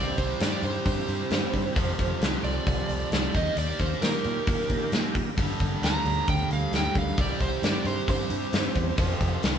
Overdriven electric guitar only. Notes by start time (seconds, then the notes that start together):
Already playing: C3 G3 C4
1.75 F2 C3 F3
3.33 D#3 A#3 D#4
5.37 G2 D3 G3
7.16 C3 G3 C4
8.96 F2 C3 F3